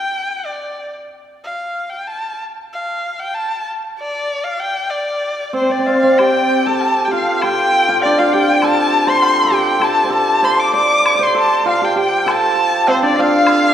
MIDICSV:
0, 0, Header, 1, 5, 480
1, 0, Start_track
1, 0, Tempo, 642398
1, 843, Time_signature, 2, 2, 24, 8
1, 1800, Tempo, 621762
1, 3720, Tempo, 638978
1, 5160, Tempo, 604839
1, 10656, End_track
2, 0, Start_track
2, 0, Title_t, "Dizi"
2, 0, Program_c, 0, 73
2, 4210, Note_on_c, 0, 72, 62
2, 4338, Note_on_c, 0, 74, 65
2, 4349, Note_off_c, 0, 72, 0
2, 4691, Note_on_c, 0, 79, 76
2, 4702, Note_off_c, 0, 74, 0
2, 5043, Note_on_c, 0, 81, 92
2, 5054, Note_off_c, 0, 79, 0
2, 5403, Note_off_c, 0, 81, 0
2, 5409, Note_on_c, 0, 77, 77
2, 5660, Note_on_c, 0, 79, 80
2, 5672, Note_off_c, 0, 77, 0
2, 6123, Note_on_c, 0, 74, 68
2, 6135, Note_off_c, 0, 79, 0
2, 6246, Note_on_c, 0, 77, 75
2, 6258, Note_off_c, 0, 74, 0
2, 6373, Note_on_c, 0, 79, 79
2, 6385, Note_off_c, 0, 77, 0
2, 6595, Note_on_c, 0, 81, 71
2, 6607, Note_off_c, 0, 79, 0
2, 6647, Note_on_c, 0, 84, 65
2, 6659, Note_off_c, 0, 81, 0
2, 6705, Note_on_c, 0, 81, 90
2, 6717, Note_off_c, 0, 84, 0
2, 6944, Note_on_c, 0, 84, 107
2, 6956, Note_off_c, 0, 81, 0
2, 7333, Note_off_c, 0, 84, 0
2, 7543, Note_on_c, 0, 81, 86
2, 7717, Note_off_c, 0, 81, 0
2, 7722, Note_on_c, 0, 84, 63
2, 7778, Note_on_c, 0, 81, 85
2, 7790, Note_off_c, 0, 84, 0
2, 8037, Note_on_c, 0, 84, 81
2, 8049, Note_off_c, 0, 81, 0
2, 8155, Note_on_c, 0, 86, 86
2, 8167, Note_off_c, 0, 84, 0
2, 8278, Note_off_c, 0, 86, 0
2, 8287, Note_on_c, 0, 86, 99
2, 8575, Note_off_c, 0, 86, 0
2, 8608, Note_on_c, 0, 86, 52
2, 8662, Note_on_c, 0, 84, 94
2, 8674, Note_off_c, 0, 86, 0
2, 9019, Note_on_c, 0, 77, 79
2, 9031, Note_off_c, 0, 84, 0
2, 9262, Note_on_c, 0, 79, 84
2, 9273, Note_off_c, 0, 77, 0
2, 9491, Note_on_c, 0, 81, 84
2, 9503, Note_off_c, 0, 79, 0
2, 9551, Note_on_c, 0, 79, 64
2, 9563, Note_off_c, 0, 81, 0
2, 9600, Note_on_c, 0, 81, 86
2, 9612, Note_off_c, 0, 79, 0
2, 9971, Note_on_c, 0, 72, 77
2, 9983, Note_off_c, 0, 81, 0
2, 10081, Note_off_c, 0, 72, 0
2, 10085, Note_on_c, 0, 74, 83
2, 10199, Note_on_c, 0, 77, 109
2, 10211, Note_off_c, 0, 74, 0
2, 10656, Note_off_c, 0, 77, 0
2, 10656, End_track
3, 0, Start_track
3, 0, Title_t, "Erhu"
3, 0, Program_c, 1, 110
3, 0, Note_on_c, 1, 79, 84
3, 342, Note_on_c, 1, 74, 62
3, 353, Note_off_c, 1, 79, 0
3, 713, Note_off_c, 1, 74, 0
3, 1078, Note_on_c, 1, 77, 63
3, 1416, Note_on_c, 1, 79, 66
3, 1428, Note_off_c, 1, 77, 0
3, 1549, Note_on_c, 1, 81, 75
3, 1561, Note_off_c, 1, 79, 0
3, 1793, Note_off_c, 1, 81, 0
3, 2046, Note_on_c, 1, 77, 72
3, 2405, Note_on_c, 1, 79, 83
3, 2416, Note_off_c, 1, 77, 0
3, 2523, Note_on_c, 1, 81, 88
3, 2535, Note_off_c, 1, 79, 0
3, 2764, Note_off_c, 1, 81, 0
3, 3026, Note_on_c, 1, 74, 85
3, 3366, Note_on_c, 1, 77, 85
3, 3378, Note_off_c, 1, 74, 0
3, 3493, Note_on_c, 1, 79, 94
3, 3505, Note_off_c, 1, 77, 0
3, 3723, Note_on_c, 1, 74, 82
3, 3735, Note_off_c, 1, 79, 0
3, 4206, Note_off_c, 1, 74, 0
3, 4220, Note_on_c, 1, 72, 72
3, 4332, Note_on_c, 1, 74, 67
3, 4343, Note_off_c, 1, 72, 0
3, 4445, Note_on_c, 1, 77, 77
3, 4456, Note_off_c, 1, 74, 0
3, 4684, Note_on_c, 1, 79, 90
3, 4695, Note_off_c, 1, 77, 0
3, 5047, Note_on_c, 1, 81, 92
3, 5058, Note_off_c, 1, 79, 0
3, 5348, Note_on_c, 1, 79, 63
3, 5360, Note_off_c, 1, 81, 0
3, 5398, Note_on_c, 1, 77, 90
3, 5410, Note_off_c, 1, 79, 0
3, 5642, Note_on_c, 1, 79, 106
3, 5654, Note_off_c, 1, 77, 0
3, 6120, Note_off_c, 1, 79, 0
3, 6125, Note_on_c, 1, 74, 91
3, 6246, Note_on_c, 1, 77, 87
3, 6258, Note_off_c, 1, 74, 0
3, 6365, Note_on_c, 1, 79, 97
3, 6377, Note_off_c, 1, 77, 0
3, 6609, Note_on_c, 1, 81, 115
3, 6621, Note_off_c, 1, 79, 0
3, 6971, Note_on_c, 1, 84, 104
3, 6983, Note_off_c, 1, 81, 0
3, 7322, Note_on_c, 1, 79, 97
3, 7334, Note_off_c, 1, 84, 0
3, 7566, Note_on_c, 1, 81, 109
3, 7578, Note_off_c, 1, 79, 0
3, 7796, Note_off_c, 1, 81, 0
3, 7813, Note_on_c, 1, 81, 102
3, 8044, Note_on_c, 1, 84, 100
3, 8055, Note_off_c, 1, 81, 0
3, 8164, Note_on_c, 1, 86, 98
3, 8176, Note_off_c, 1, 84, 0
3, 8277, Note_off_c, 1, 86, 0
3, 8282, Note_on_c, 1, 86, 106
3, 8665, Note_on_c, 1, 84, 92
3, 8676, Note_off_c, 1, 86, 0
3, 8779, Note_off_c, 1, 84, 0
3, 8804, Note_on_c, 1, 81, 93
3, 9017, Note_off_c, 1, 81, 0
3, 9034, Note_on_c, 1, 77, 89
3, 9155, Note_on_c, 1, 79, 91
3, 9167, Note_off_c, 1, 77, 0
3, 9268, Note_off_c, 1, 79, 0
3, 9274, Note_on_c, 1, 79, 95
3, 9523, Note_on_c, 1, 81, 114
3, 9535, Note_off_c, 1, 79, 0
3, 9993, Note_on_c, 1, 72, 100
3, 10005, Note_off_c, 1, 81, 0
3, 10101, Note_off_c, 1, 72, 0
3, 10113, Note_on_c, 1, 74, 92
3, 10231, Note_on_c, 1, 77, 113
3, 10243, Note_off_c, 1, 74, 0
3, 10656, Note_off_c, 1, 77, 0
3, 10656, End_track
4, 0, Start_track
4, 0, Title_t, "Hammered dulcimer"
4, 0, Program_c, 2, 15
4, 4196, Note_on_c, 2, 60, 65
4, 4256, Note_off_c, 2, 60, 0
4, 4259, Note_on_c, 2, 60, 46
4, 4317, Note_off_c, 2, 60, 0
4, 4320, Note_on_c, 2, 60, 55
4, 4388, Note_off_c, 2, 60, 0
4, 4391, Note_on_c, 2, 60, 43
4, 4452, Note_off_c, 2, 60, 0
4, 4455, Note_on_c, 2, 60, 52
4, 4507, Note_off_c, 2, 60, 0
4, 4510, Note_on_c, 2, 60, 41
4, 4567, Note_off_c, 2, 60, 0
4, 4570, Note_on_c, 2, 60, 48
4, 4694, Note_on_c, 2, 67, 67
4, 5047, Note_on_c, 2, 69, 72
4, 5365, Note_off_c, 2, 67, 0
4, 5368, Note_on_c, 2, 67, 58
4, 5408, Note_on_c, 2, 65, 62
4, 5646, Note_off_c, 2, 67, 0
4, 5649, Note_on_c, 2, 67, 67
4, 6008, Note_off_c, 2, 65, 0
4, 6011, Note_on_c, 2, 65, 73
4, 6143, Note_on_c, 2, 62, 73
4, 6252, Note_off_c, 2, 65, 0
4, 6255, Note_on_c, 2, 65, 75
4, 6366, Note_off_c, 2, 67, 0
4, 6369, Note_on_c, 2, 67, 72
4, 6595, Note_off_c, 2, 69, 0
4, 6599, Note_on_c, 2, 69, 79
4, 6950, Note_on_c, 2, 72, 92
4, 7244, Note_off_c, 2, 69, 0
4, 7247, Note_on_c, 2, 69, 61
4, 7295, Note_off_c, 2, 67, 0
4, 7298, Note_on_c, 2, 67, 74
4, 7524, Note_off_c, 2, 69, 0
4, 7527, Note_on_c, 2, 69, 78
4, 7715, Note_off_c, 2, 72, 0
4, 7716, Note_off_c, 2, 60, 0
4, 7719, Note_on_c, 2, 72, 59
4, 7766, Note_off_c, 2, 69, 0
4, 7769, Note_on_c, 2, 69, 81
4, 8022, Note_off_c, 2, 72, 0
4, 8025, Note_on_c, 2, 72, 85
4, 8270, Note_on_c, 2, 74, 83
4, 8598, Note_off_c, 2, 74, 0
4, 8601, Note_on_c, 2, 74, 49
4, 8629, Note_off_c, 2, 72, 0
4, 8632, Note_on_c, 2, 72, 80
4, 8753, Note_off_c, 2, 69, 0
4, 8756, Note_on_c, 2, 69, 81
4, 8930, Note_off_c, 2, 65, 0
4, 9002, Note_on_c, 2, 65, 80
4, 9105, Note_off_c, 2, 62, 0
4, 9126, Note_off_c, 2, 67, 0
4, 9129, Note_on_c, 2, 67, 75
4, 9239, Note_off_c, 2, 67, 0
4, 9242, Note_on_c, 2, 67, 75
4, 9481, Note_off_c, 2, 69, 0
4, 9485, Note_on_c, 2, 69, 89
4, 9972, Note_on_c, 2, 60, 80
4, 10088, Note_on_c, 2, 62, 77
4, 10216, Note_off_c, 2, 65, 0
4, 10219, Note_on_c, 2, 65, 87
4, 10556, Note_off_c, 2, 74, 0
4, 10656, Note_off_c, 2, 60, 0
4, 10656, Note_off_c, 2, 62, 0
4, 10656, Note_off_c, 2, 65, 0
4, 10656, Note_off_c, 2, 67, 0
4, 10656, Note_off_c, 2, 69, 0
4, 10656, Note_off_c, 2, 72, 0
4, 10656, End_track
5, 0, Start_track
5, 0, Title_t, "Drums"
5, 4691, Note_on_c, 9, 76, 60
5, 4766, Note_off_c, 9, 76, 0
5, 5157, Note_on_c, 9, 77, 46
5, 5237, Note_off_c, 9, 77, 0
5, 5642, Note_on_c, 9, 76, 59
5, 5722, Note_off_c, 9, 76, 0
5, 6116, Note_on_c, 9, 77, 47
5, 6195, Note_off_c, 9, 77, 0
5, 6593, Note_on_c, 9, 76, 58
5, 6673, Note_off_c, 9, 76, 0
5, 7073, Note_on_c, 9, 77, 50
5, 7152, Note_off_c, 9, 77, 0
5, 7543, Note_on_c, 9, 76, 65
5, 7623, Note_off_c, 9, 76, 0
5, 8038, Note_on_c, 9, 76, 55
5, 8118, Note_off_c, 9, 76, 0
5, 8527, Note_on_c, 9, 76, 68
5, 8607, Note_off_c, 9, 76, 0
5, 9018, Note_on_c, 9, 77, 50
5, 9097, Note_off_c, 9, 77, 0
5, 9497, Note_on_c, 9, 76, 65
5, 9576, Note_off_c, 9, 76, 0
5, 9967, Note_on_c, 9, 77, 51
5, 10047, Note_off_c, 9, 77, 0
5, 10440, Note_on_c, 9, 76, 74
5, 10519, Note_off_c, 9, 76, 0
5, 10656, End_track
0, 0, End_of_file